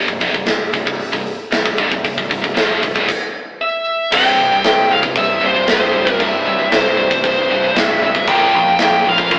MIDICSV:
0, 0, Header, 1, 7, 480
1, 0, Start_track
1, 0, Tempo, 519481
1, 1891, Time_signature, 4, 2, 24, 8
1, 8675, End_track
2, 0, Start_track
2, 0, Title_t, "Lead electric guitar"
2, 0, Program_c, 0, 29
2, 3340, Note_on_c, 0, 76, 94
2, 3818, Note_off_c, 0, 76, 0
2, 3821, Note_on_c, 0, 79, 115
2, 4291, Note_off_c, 0, 79, 0
2, 4302, Note_on_c, 0, 79, 107
2, 4521, Note_off_c, 0, 79, 0
2, 4550, Note_on_c, 0, 77, 104
2, 4612, Note_off_c, 0, 77, 0
2, 4785, Note_on_c, 0, 76, 101
2, 5026, Note_off_c, 0, 76, 0
2, 5043, Note_on_c, 0, 72, 90
2, 5252, Note_off_c, 0, 72, 0
2, 5276, Note_on_c, 0, 72, 91
2, 5664, Note_off_c, 0, 72, 0
2, 5664, Note_on_c, 0, 70, 91
2, 5748, Note_on_c, 0, 76, 108
2, 5758, Note_off_c, 0, 70, 0
2, 6230, Note_on_c, 0, 72, 98
2, 6234, Note_off_c, 0, 76, 0
2, 6704, Note_off_c, 0, 72, 0
2, 6716, Note_on_c, 0, 72, 99
2, 7189, Note_on_c, 0, 76, 103
2, 7196, Note_off_c, 0, 72, 0
2, 7662, Note_off_c, 0, 76, 0
2, 7665, Note_on_c, 0, 79, 110
2, 8151, Note_off_c, 0, 79, 0
2, 8162, Note_on_c, 0, 79, 113
2, 8392, Note_off_c, 0, 79, 0
2, 8400, Note_on_c, 0, 77, 98
2, 8630, Note_off_c, 0, 77, 0
2, 8644, Note_on_c, 0, 77, 108
2, 8675, Note_off_c, 0, 77, 0
2, 8675, End_track
3, 0, Start_track
3, 0, Title_t, "String section"
3, 0, Program_c, 1, 48
3, 3809, Note_on_c, 1, 48, 86
3, 3809, Note_on_c, 1, 52, 72
3, 3811, Note_on_c, 1, 55, 75
3, 3811, Note_on_c, 1, 64, 73
3, 3812, Note_on_c, 1, 67, 92
3, 7610, Note_off_c, 1, 48, 0
3, 7610, Note_off_c, 1, 52, 0
3, 7611, Note_off_c, 1, 55, 0
3, 7611, Note_off_c, 1, 64, 0
3, 7612, Note_off_c, 1, 67, 0
3, 7641, Note_on_c, 1, 49, 81
3, 7642, Note_on_c, 1, 70, 90
3, 7645, Note_on_c, 1, 58, 77
3, 7648, Note_on_c, 1, 65, 80
3, 7650, Note_on_c, 1, 53, 77
3, 8675, Note_off_c, 1, 49, 0
3, 8675, Note_off_c, 1, 53, 0
3, 8675, Note_off_c, 1, 58, 0
3, 8675, Note_off_c, 1, 65, 0
3, 8675, Note_off_c, 1, 70, 0
3, 8675, End_track
4, 0, Start_track
4, 0, Title_t, "Overdriven electric guitar"
4, 0, Program_c, 2, 29
4, 4986, Note_on_c, 2, 48, 93
4, 5225, Note_off_c, 2, 48, 0
4, 5260, Note_on_c, 2, 48, 90
4, 5721, Note_off_c, 2, 48, 0
4, 5749, Note_on_c, 2, 48, 99
4, 6901, Note_off_c, 2, 48, 0
4, 6913, Note_on_c, 2, 48, 96
4, 7147, Note_off_c, 2, 48, 0
4, 7191, Note_on_c, 2, 48, 92
4, 7645, Note_off_c, 2, 48, 0
4, 8675, End_track
5, 0, Start_track
5, 0, Title_t, "Distorted electric guitar"
5, 0, Program_c, 3, 30
5, 75, Note_on_c, 3, 36, 71
5, 77, Note_on_c, 3, 43, 68
5, 188, Note_off_c, 3, 36, 0
5, 191, Note_on_c, 3, 41, 92
5, 201, Note_off_c, 3, 43, 0
5, 204, Note_on_c, 3, 48, 97
5, 306, Note_off_c, 3, 48, 0
5, 308, Note_off_c, 3, 41, 0
5, 310, Note_on_c, 3, 43, 71
5, 311, Note_on_c, 3, 36, 65
5, 417, Note_off_c, 3, 36, 0
5, 423, Note_off_c, 3, 43, 0
5, 428, Note_on_c, 3, 36, 60
5, 435, Note_on_c, 3, 43, 74
5, 631, Note_off_c, 3, 36, 0
5, 634, Note_off_c, 3, 43, 0
5, 677, Note_on_c, 3, 36, 67
5, 685, Note_on_c, 3, 43, 76
5, 777, Note_off_c, 3, 36, 0
5, 778, Note_off_c, 3, 43, 0
5, 788, Note_on_c, 3, 36, 68
5, 789, Note_on_c, 3, 43, 76
5, 991, Note_off_c, 3, 36, 0
5, 992, Note_off_c, 3, 43, 0
5, 1034, Note_on_c, 3, 36, 64
5, 1037, Note_on_c, 3, 43, 76
5, 1234, Note_off_c, 3, 36, 0
5, 1236, Note_off_c, 3, 43, 0
5, 1397, Note_on_c, 3, 36, 65
5, 1410, Note_on_c, 3, 43, 71
5, 1519, Note_off_c, 3, 36, 0
5, 1519, Note_off_c, 3, 43, 0
5, 1530, Note_on_c, 3, 36, 68
5, 1530, Note_on_c, 3, 43, 74
5, 1645, Note_off_c, 3, 43, 0
5, 1651, Note_off_c, 3, 36, 0
5, 1657, Note_on_c, 3, 43, 92
5, 1661, Note_on_c, 3, 50, 103
5, 1764, Note_off_c, 3, 43, 0
5, 1769, Note_off_c, 3, 50, 0
5, 1769, Note_on_c, 3, 36, 65
5, 1775, Note_on_c, 3, 43, 69
5, 1885, Note_off_c, 3, 36, 0
5, 1888, Note_off_c, 3, 43, 0
5, 1896, Note_on_c, 3, 36, 58
5, 1899, Note_on_c, 3, 43, 64
5, 2004, Note_off_c, 3, 36, 0
5, 2006, Note_off_c, 3, 43, 0
5, 2015, Note_on_c, 3, 36, 69
5, 2017, Note_on_c, 3, 43, 74
5, 2109, Note_off_c, 3, 36, 0
5, 2112, Note_off_c, 3, 43, 0
5, 2121, Note_on_c, 3, 36, 62
5, 2123, Note_on_c, 3, 43, 64
5, 2221, Note_off_c, 3, 36, 0
5, 2225, Note_off_c, 3, 43, 0
5, 2232, Note_on_c, 3, 36, 60
5, 2236, Note_on_c, 3, 43, 70
5, 2345, Note_off_c, 3, 36, 0
5, 2348, Note_on_c, 3, 41, 89
5, 2349, Note_off_c, 3, 43, 0
5, 2353, Note_on_c, 3, 48, 95
5, 2356, Note_on_c, 3, 53, 101
5, 2592, Note_off_c, 3, 41, 0
5, 2595, Note_off_c, 3, 48, 0
5, 2596, Note_on_c, 3, 36, 60
5, 2597, Note_off_c, 3, 53, 0
5, 2599, Note_on_c, 3, 43, 66
5, 2717, Note_off_c, 3, 36, 0
5, 2720, Note_off_c, 3, 43, 0
5, 2720, Note_on_c, 3, 37, 86
5, 2724, Note_on_c, 3, 44, 94
5, 2839, Note_off_c, 3, 37, 0
5, 2841, Note_off_c, 3, 44, 0
5, 3808, Note_on_c, 3, 36, 98
5, 3813, Note_on_c, 3, 43, 99
5, 3815, Note_on_c, 3, 48, 108
5, 4036, Note_off_c, 3, 36, 0
5, 4039, Note_off_c, 3, 43, 0
5, 4040, Note_off_c, 3, 48, 0
5, 4059, Note_on_c, 3, 43, 78
5, 4061, Note_on_c, 3, 36, 73
5, 4161, Note_off_c, 3, 43, 0
5, 4162, Note_off_c, 3, 36, 0
5, 4172, Note_on_c, 3, 43, 82
5, 4173, Note_on_c, 3, 36, 72
5, 4291, Note_off_c, 3, 36, 0
5, 4292, Note_off_c, 3, 43, 0
5, 4302, Note_on_c, 3, 36, 82
5, 4305, Note_on_c, 3, 43, 91
5, 4513, Note_off_c, 3, 36, 0
5, 4515, Note_off_c, 3, 43, 0
5, 4538, Note_on_c, 3, 36, 74
5, 4538, Note_on_c, 3, 43, 87
5, 4633, Note_off_c, 3, 43, 0
5, 4637, Note_off_c, 3, 36, 0
5, 4644, Note_on_c, 3, 43, 83
5, 4648, Note_on_c, 3, 36, 72
5, 4757, Note_off_c, 3, 36, 0
5, 4763, Note_off_c, 3, 43, 0
5, 4768, Note_on_c, 3, 36, 74
5, 4774, Note_on_c, 3, 43, 84
5, 4986, Note_off_c, 3, 36, 0
5, 4989, Note_off_c, 3, 43, 0
5, 5002, Note_on_c, 3, 43, 87
5, 5007, Note_on_c, 3, 36, 70
5, 5111, Note_off_c, 3, 36, 0
5, 5112, Note_off_c, 3, 43, 0
5, 5123, Note_on_c, 3, 36, 67
5, 5123, Note_on_c, 3, 43, 88
5, 5228, Note_off_c, 3, 36, 0
5, 5234, Note_off_c, 3, 43, 0
5, 5239, Note_on_c, 3, 36, 83
5, 5246, Note_on_c, 3, 43, 89
5, 5459, Note_off_c, 3, 36, 0
5, 5459, Note_off_c, 3, 43, 0
5, 5470, Note_on_c, 3, 36, 63
5, 5470, Note_on_c, 3, 43, 81
5, 5582, Note_off_c, 3, 43, 0
5, 5590, Note_off_c, 3, 36, 0
5, 5593, Note_on_c, 3, 43, 91
5, 5601, Note_on_c, 3, 36, 71
5, 5711, Note_off_c, 3, 36, 0
5, 5712, Note_off_c, 3, 43, 0
5, 5722, Note_on_c, 3, 36, 79
5, 5723, Note_on_c, 3, 43, 95
5, 5943, Note_off_c, 3, 36, 0
5, 5943, Note_off_c, 3, 43, 0
5, 5968, Note_on_c, 3, 43, 85
5, 5973, Note_on_c, 3, 36, 73
5, 6073, Note_off_c, 3, 36, 0
5, 6073, Note_off_c, 3, 43, 0
5, 6084, Note_on_c, 3, 36, 67
5, 6084, Note_on_c, 3, 43, 92
5, 6197, Note_off_c, 3, 36, 0
5, 6199, Note_off_c, 3, 43, 0
5, 6208, Note_on_c, 3, 36, 86
5, 6210, Note_on_c, 3, 43, 86
5, 6425, Note_off_c, 3, 36, 0
5, 6426, Note_off_c, 3, 43, 0
5, 6441, Note_on_c, 3, 43, 86
5, 6446, Note_on_c, 3, 36, 78
5, 6551, Note_off_c, 3, 43, 0
5, 6556, Note_off_c, 3, 36, 0
5, 6562, Note_on_c, 3, 43, 88
5, 6567, Note_on_c, 3, 36, 70
5, 6686, Note_off_c, 3, 43, 0
5, 6689, Note_off_c, 3, 36, 0
5, 6700, Note_on_c, 3, 43, 90
5, 6701, Note_on_c, 3, 36, 75
5, 6911, Note_off_c, 3, 36, 0
5, 6911, Note_off_c, 3, 43, 0
5, 6934, Note_on_c, 3, 36, 68
5, 6934, Note_on_c, 3, 43, 79
5, 7045, Note_off_c, 3, 36, 0
5, 7045, Note_off_c, 3, 43, 0
5, 7056, Note_on_c, 3, 36, 68
5, 7056, Note_on_c, 3, 43, 85
5, 7156, Note_off_c, 3, 36, 0
5, 7162, Note_off_c, 3, 43, 0
5, 7167, Note_on_c, 3, 36, 81
5, 7173, Note_on_c, 3, 43, 82
5, 7384, Note_off_c, 3, 36, 0
5, 7387, Note_off_c, 3, 43, 0
5, 7419, Note_on_c, 3, 43, 89
5, 7420, Note_on_c, 3, 36, 65
5, 7530, Note_off_c, 3, 43, 0
5, 7535, Note_off_c, 3, 36, 0
5, 7541, Note_on_c, 3, 43, 87
5, 7552, Note_on_c, 3, 36, 69
5, 7655, Note_off_c, 3, 43, 0
5, 7661, Note_off_c, 3, 36, 0
5, 7667, Note_on_c, 3, 46, 95
5, 7675, Note_on_c, 3, 53, 106
5, 7677, Note_on_c, 3, 58, 92
5, 7883, Note_off_c, 3, 46, 0
5, 7887, Note_off_c, 3, 53, 0
5, 7888, Note_off_c, 3, 58, 0
5, 7910, Note_on_c, 3, 46, 70
5, 7911, Note_on_c, 3, 53, 89
5, 8013, Note_off_c, 3, 53, 0
5, 8014, Note_off_c, 3, 46, 0
5, 8024, Note_on_c, 3, 53, 87
5, 8025, Note_on_c, 3, 46, 74
5, 8116, Note_off_c, 3, 46, 0
5, 8127, Note_on_c, 3, 46, 82
5, 8128, Note_off_c, 3, 53, 0
5, 8139, Note_on_c, 3, 53, 94
5, 8343, Note_off_c, 3, 46, 0
5, 8347, Note_off_c, 3, 53, 0
5, 8358, Note_on_c, 3, 46, 74
5, 8358, Note_on_c, 3, 53, 88
5, 8478, Note_off_c, 3, 46, 0
5, 8478, Note_off_c, 3, 53, 0
5, 8489, Note_on_c, 3, 46, 67
5, 8489, Note_on_c, 3, 53, 90
5, 8597, Note_off_c, 3, 46, 0
5, 8597, Note_off_c, 3, 53, 0
5, 8608, Note_on_c, 3, 46, 72
5, 8608, Note_on_c, 3, 53, 90
5, 8675, Note_off_c, 3, 46, 0
5, 8675, Note_off_c, 3, 53, 0
5, 8675, End_track
6, 0, Start_track
6, 0, Title_t, "Picked electric bass"
6, 0, Program_c, 4, 34
6, 76, Note_on_c, 4, 24, 84
6, 194, Note_off_c, 4, 24, 0
6, 199, Note_on_c, 4, 29, 93
6, 311, Note_off_c, 4, 29, 0
6, 317, Note_on_c, 4, 24, 79
6, 434, Note_off_c, 4, 24, 0
6, 458, Note_on_c, 4, 24, 84
6, 674, Note_off_c, 4, 24, 0
6, 679, Note_on_c, 4, 24, 83
6, 796, Note_off_c, 4, 24, 0
6, 804, Note_on_c, 4, 24, 79
6, 1030, Note_off_c, 4, 24, 0
6, 1046, Note_on_c, 4, 24, 75
6, 1272, Note_off_c, 4, 24, 0
6, 1415, Note_on_c, 4, 24, 74
6, 1525, Note_off_c, 4, 24, 0
6, 1532, Note_on_c, 4, 24, 84
6, 1643, Note_off_c, 4, 24, 0
6, 1649, Note_on_c, 4, 31, 95
6, 1762, Note_off_c, 4, 31, 0
6, 1769, Note_on_c, 4, 24, 79
6, 1882, Note_off_c, 4, 24, 0
6, 1895, Note_on_c, 4, 24, 74
6, 2005, Note_off_c, 4, 24, 0
6, 2010, Note_on_c, 4, 24, 77
6, 2123, Note_off_c, 4, 24, 0
6, 2132, Note_on_c, 4, 24, 75
6, 2244, Note_off_c, 4, 24, 0
6, 2258, Note_on_c, 4, 24, 77
6, 2367, Note_off_c, 4, 24, 0
6, 2381, Note_on_c, 4, 29, 93
6, 2600, Note_off_c, 4, 29, 0
6, 2615, Note_on_c, 4, 24, 75
6, 2726, Note_off_c, 4, 24, 0
6, 2735, Note_on_c, 4, 25, 93
6, 2845, Note_off_c, 4, 25, 0
6, 3812, Note_on_c, 4, 24, 99
6, 3976, Note_off_c, 4, 24, 0
6, 4053, Note_on_c, 4, 24, 86
6, 4217, Note_off_c, 4, 24, 0
6, 4301, Note_on_c, 4, 24, 96
6, 4462, Note_off_c, 4, 24, 0
6, 4536, Note_on_c, 4, 24, 91
6, 4699, Note_off_c, 4, 24, 0
6, 4769, Note_on_c, 4, 24, 89
6, 4934, Note_off_c, 4, 24, 0
6, 5023, Note_on_c, 4, 24, 94
6, 5183, Note_off_c, 4, 24, 0
6, 5254, Note_on_c, 4, 24, 95
6, 5417, Note_off_c, 4, 24, 0
6, 5490, Note_on_c, 4, 24, 92
6, 5655, Note_off_c, 4, 24, 0
6, 5732, Note_on_c, 4, 24, 94
6, 5896, Note_off_c, 4, 24, 0
6, 5964, Note_on_c, 4, 24, 93
6, 6130, Note_off_c, 4, 24, 0
6, 6207, Note_on_c, 4, 24, 96
6, 6372, Note_off_c, 4, 24, 0
6, 6448, Note_on_c, 4, 24, 93
6, 6613, Note_off_c, 4, 24, 0
6, 6688, Note_on_c, 4, 24, 88
6, 6852, Note_off_c, 4, 24, 0
6, 6933, Note_on_c, 4, 24, 92
6, 7095, Note_off_c, 4, 24, 0
6, 7173, Note_on_c, 4, 24, 93
6, 7336, Note_off_c, 4, 24, 0
6, 7409, Note_on_c, 4, 32, 97
6, 7573, Note_off_c, 4, 32, 0
6, 7646, Note_on_c, 4, 34, 101
6, 7811, Note_off_c, 4, 34, 0
6, 7896, Note_on_c, 4, 34, 94
6, 8057, Note_off_c, 4, 34, 0
6, 8134, Note_on_c, 4, 34, 96
6, 8295, Note_off_c, 4, 34, 0
6, 8377, Note_on_c, 4, 34, 93
6, 8538, Note_off_c, 4, 34, 0
6, 8609, Note_on_c, 4, 34, 95
6, 8675, Note_off_c, 4, 34, 0
6, 8675, End_track
7, 0, Start_track
7, 0, Title_t, "Drums"
7, 76, Note_on_c, 9, 36, 85
7, 168, Note_off_c, 9, 36, 0
7, 187, Note_on_c, 9, 46, 61
7, 197, Note_on_c, 9, 36, 86
7, 279, Note_off_c, 9, 46, 0
7, 289, Note_off_c, 9, 36, 0
7, 318, Note_on_c, 9, 36, 78
7, 410, Note_off_c, 9, 36, 0
7, 428, Note_on_c, 9, 46, 77
7, 432, Note_on_c, 9, 38, 106
7, 520, Note_off_c, 9, 46, 0
7, 525, Note_off_c, 9, 38, 0
7, 669, Note_on_c, 9, 46, 56
7, 681, Note_on_c, 9, 36, 86
7, 761, Note_off_c, 9, 46, 0
7, 773, Note_off_c, 9, 36, 0
7, 804, Note_on_c, 9, 36, 87
7, 896, Note_off_c, 9, 36, 0
7, 922, Note_on_c, 9, 46, 74
7, 1014, Note_off_c, 9, 46, 0
7, 1046, Note_on_c, 9, 36, 85
7, 1138, Note_off_c, 9, 36, 0
7, 1171, Note_on_c, 9, 46, 55
7, 1263, Note_off_c, 9, 46, 0
7, 1404, Note_on_c, 9, 46, 73
7, 1409, Note_on_c, 9, 38, 116
7, 1496, Note_off_c, 9, 46, 0
7, 1501, Note_off_c, 9, 38, 0
7, 1530, Note_on_c, 9, 36, 92
7, 1622, Note_off_c, 9, 36, 0
7, 1639, Note_on_c, 9, 46, 52
7, 1648, Note_on_c, 9, 36, 80
7, 1731, Note_off_c, 9, 46, 0
7, 1740, Note_off_c, 9, 36, 0
7, 1770, Note_on_c, 9, 36, 83
7, 1863, Note_off_c, 9, 36, 0
7, 1889, Note_on_c, 9, 46, 74
7, 1891, Note_on_c, 9, 36, 92
7, 1981, Note_off_c, 9, 46, 0
7, 1984, Note_off_c, 9, 36, 0
7, 2013, Note_on_c, 9, 36, 83
7, 2106, Note_off_c, 9, 36, 0
7, 2134, Note_on_c, 9, 36, 86
7, 2136, Note_on_c, 9, 46, 56
7, 2226, Note_off_c, 9, 36, 0
7, 2228, Note_off_c, 9, 46, 0
7, 2254, Note_on_c, 9, 36, 86
7, 2347, Note_off_c, 9, 36, 0
7, 2371, Note_on_c, 9, 46, 80
7, 2376, Note_on_c, 9, 38, 112
7, 2463, Note_off_c, 9, 46, 0
7, 2468, Note_off_c, 9, 38, 0
7, 2615, Note_on_c, 9, 36, 89
7, 2618, Note_on_c, 9, 46, 59
7, 2707, Note_off_c, 9, 36, 0
7, 2711, Note_off_c, 9, 46, 0
7, 2732, Note_on_c, 9, 36, 92
7, 2824, Note_off_c, 9, 36, 0
7, 2850, Note_on_c, 9, 49, 98
7, 2851, Note_on_c, 9, 36, 93
7, 2943, Note_off_c, 9, 49, 0
7, 2944, Note_off_c, 9, 36, 0
7, 3806, Note_on_c, 9, 49, 121
7, 3806, Note_on_c, 9, 57, 68
7, 3810, Note_on_c, 9, 36, 110
7, 3899, Note_off_c, 9, 49, 0
7, 3899, Note_off_c, 9, 57, 0
7, 3903, Note_off_c, 9, 36, 0
7, 4288, Note_on_c, 9, 57, 67
7, 4293, Note_on_c, 9, 38, 118
7, 4380, Note_off_c, 9, 57, 0
7, 4385, Note_off_c, 9, 38, 0
7, 4648, Note_on_c, 9, 36, 94
7, 4740, Note_off_c, 9, 36, 0
7, 4763, Note_on_c, 9, 57, 63
7, 4765, Note_on_c, 9, 36, 99
7, 4855, Note_off_c, 9, 57, 0
7, 4857, Note_off_c, 9, 36, 0
7, 5243, Note_on_c, 9, 57, 66
7, 5248, Note_on_c, 9, 38, 123
7, 5336, Note_off_c, 9, 57, 0
7, 5340, Note_off_c, 9, 38, 0
7, 5608, Note_on_c, 9, 36, 88
7, 5700, Note_off_c, 9, 36, 0
7, 5729, Note_on_c, 9, 36, 97
7, 5732, Note_on_c, 9, 57, 59
7, 5822, Note_off_c, 9, 36, 0
7, 5824, Note_off_c, 9, 57, 0
7, 6207, Note_on_c, 9, 57, 67
7, 6212, Note_on_c, 9, 38, 116
7, 6299, Note_off_c, 9, 57, 0
7, 6304, Note_off_c, 9, 38, 0
7, 6569, Note_on_c, 9, 36, 96
7, 6662, Note_off_c, 9, 36, 0
7, 6688, Note_on_c, 9, 36, 97
7, 6688, Note_on_c, 9, 57, 66
7, 6780, Note_off_c, 9, 57, 0
7, 6781, Note_off_c, 9, 36, 0
7, 7171, Note_on_c, 9, 57, 68
7, 7176, Note_on_c, 9, 38, 121
7, 7263, Note_off_c, 9, 57, 0
7, 7268, Note_off_c, 9, 38, 0
7, 7529, Note_on_c, 9, 36, 90
7, 7621, Note_off_c, 9, 36, 0
7, 7643, Note_on_c, 9, 57, 69
7, 7647, Note_on_c, 9, 36, 99
7, 7735, Note_off_c, 9, 57, 0
7, 7740, Note_off_c, 9, 36, 0
7, 8118, Note_on_c, 9, 57, 63
7, 8123, Note_on_c, 9, 38, 121
7, 8210, Note_off_c, 9, 57, 0
7, 8215, Note_off_c, 9, 38, 0
7, 8483, Note_on_c, 9, 36, 94
7, 8575, Note_off_c, 9, 36, 0
7, 8600, Note_on_c, 9, 57, 62
7, 8605, Note_on_c, 9, 36, 101
7, 8675, Note_off_c, 9, 36, 0
7, 8675, Note_off_c, 9, 57, 0
7, 8675, End_track
0, 0, End_of_file